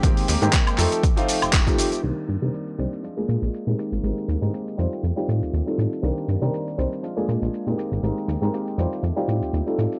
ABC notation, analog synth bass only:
X:1
M:4/4
L:1/16
Q:"Swing 16ths" 1/4=120
K:Fdor
V:1 name="Analog synth bass" clef=bass
A,,, z E,, A,, z2 F,, z4 F,,, F,,, z3 | C,, z G,, C, z2 C,, z3 B,, B,,, z B,, z A,,, | A,,, z E,, A,, z2 F,, z F,, z =A,, E,, E,, z A,, z | C,, z G,, C, z2 C,, z3 B,, B,,, z B,, z A,,, |
A,,, z E,, A,, z2 F,, z F,, z =A,, E,, E,, z A,, z |]